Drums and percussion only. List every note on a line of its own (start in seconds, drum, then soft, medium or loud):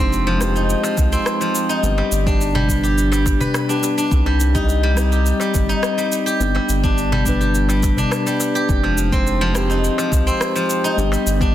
0.13 shaker soft
0.41 cross-stick medium
0.41 shaker medium
0.56 shaker soft
0.70 shaker soft
0.84 darbuka tek medium
0.84 shaker soft
0.98 kick loud
0.98 darbuka ka medium
0.98 shaker medium
1.13 shaker soft
1.26 cross-stick medium
1.26 shaker soft
1.41 darbuka ka soft
1.41 shaker soft
1.55 shaker medium
1.70 shaker soft
1.84 shaker soft
1.98 darbuka tek medium
2.12 shaker medium
2.26 kick loud
2.26 darbuka tek soft
2.26 shaker soft
2.41 shaker soft
2.55 darbuka ka medium
2.55 darbuka dum medium
2.69 kick medium
2.69 shaker medium
2.84 shaker soft
2.98 shaker soft
3.12 darbuka tek medium
3.12 shaker soft
3.26 kick loud
3.26 darbuka tek medium
3.26 shaker medium
3.40 darbuka dum medium
3.40 shaker soft
3.54 cross-stick medium
3.54 darbuka tek medium
3.54 shaker soft
3.69 darbuka ka soft
3.69 shaker soft
3.83 darbuka ka medium
3.83 shaker medium
3.98 shaker soft
4.12 kick loud
4.12 shaker soft
4.26 darbuka tek medium
4.40 shaker medium
4.55 kick loud
4.55 darbuka tek soft
4.55 shaker soft
4.69 shaker soft
4.97 cross-stick medium
4.97 shaker medium
5.12 shaker soft
5.26 shaker soft
5.40 darbuka tek medium
5.40 shaker soft
5.54 kick loud
5.54 darbuka ka medium
5.54 shaker medium
5.70 shaker soft
5.83 cross-stick medium
5.83 shaker soft
5.98 darbuka ka soft
5.98 shaker soft
6.12 shaker medium
6.27 shaker soft
6.41 shaker soft
6.56 darbuka tek medium
6.69 shaker medium
6.84 kick loud
6.84 darbuka tek soft
6.84 shaker soft
6.98 shaker soft
7.12 darbuka ka medium
7.12 darbuka dum medium
7.26 kick medium
7.26 shaker medium
7.41 shaker soft
7.55 shaker soft
7.69 darbuka tek medium
7.69 shaker soft
7.83 kick medium
7.83 darbuka tek medium
7.83 shaker medium
7.97 darbuka dum medium
7.97 shaker soft
8.11 cross-stick medium
8.11 darbuka tek medium
8.11 shaker soft
8.27 darbuka ka soft
8.27 shaker soft
8.40 darbuka ka medium
8.40 shaker medium
8.56 shaker soft
8.69 kick loud
8.69 shaker soft
8.83 darbuka tek medium
8.98 shaker medium
9.12 kick medium
9.12 darbuka tek soft
9.12 shaker soft
9.27 shaker soft
9.55 cross-stick medium
9.55 shaker medium
9.71 shaker soft
9.84 shaker soft
9.98 darbuka tek medium
9.98 shaker soft
10.12 kick medium
10.12 darbuka ka medium
10.12 shaker medium
10.28 shaker soft
10.41 cross-stick medium
10.41 shaker soft
10.55 darbuka ka soft
10.55 shaker soft
10.70 shaker medium
10.85 shaker soft
10.98 shaker soft
11.12 darbuka tek medium
11.12 shaker soft
11.27 shaker medium
11.41 kick loud
11.41 darbuka tek soft
11.41 shaker soft